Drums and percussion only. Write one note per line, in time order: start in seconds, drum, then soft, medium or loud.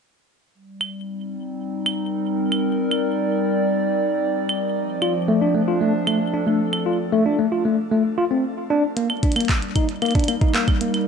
0.81 claves medium
1.86 claves medium
2.52 claves medium
2.91 claves soft
4.49 claves medium
5.02 claves soft
6.07 claves medium
6.73 claves medium
8.97 closed hi-hat medium
9.10 claves medium
9.23 kick loud
9.23 closed hi-hat medium
9.32 closed hi-hat medium
9.36 closed hi-hat soft
9.36 claves medium
9.41 closed hi-hat medium
9.45 closed hi-hat soft
9.49 kick loud
9.49 clap loud
9.49 closed hi-hat medium
9.54 closed hi-hat soft
9.62 closed hi-hat soft
9.76 kick loud
9.76 closed hi-hat medium
9.76 claves medium
9.89 closed hi-hat soft
10.02 closed hi-hat soft
10.02 claves soft
10.05 closed hi-hat soft
10.05 claves soft
10.11 closed hi-hat soft
10.11 claves soft
10.15 kick loud
10.15 closed hi-hat soft
10.20 closed hi-hat medium
10.24 closed hi-hat medium
10.28 closed hi-hat medium
10.28 claves medium
10.41 kick loud
10.41 closed hi-hat soft
10.55 clap loud
10.55 closed hi-hat medium
10.68 kick loud
10.68 closed hi-hat soft
10.68 claves medium
10.81 closed hi-hat medium
10.94 closed hi-hat soft
10.94 claves medium